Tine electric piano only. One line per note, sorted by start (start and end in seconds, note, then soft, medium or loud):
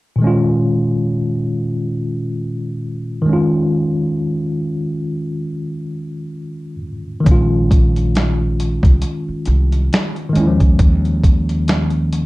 0.16 3.23 A#2 medium
0.16 3.21 D#3 medium
0.22 3.25 G#3 medium
0.22 3.27 C#4 medium
0.27 3.28 F4 medium
3.22 6.74 D#3 medium
3.26 6.76 G#3 medium
3.26 6.78 C#4 medium
3.33 6.80 F4 medium
7.20 10.28 D#3 medium
7.20 10.30 G#3 medium
7.28 10.32 C#4 medium
7.28 10.34 F4 medium
10.29 12.26 D#3 medium
10.29 12.26 G#3 medium
10.37 12.26 C#4 medium
10.37 10.45 E4 medium
10.47 12.26 F3 medium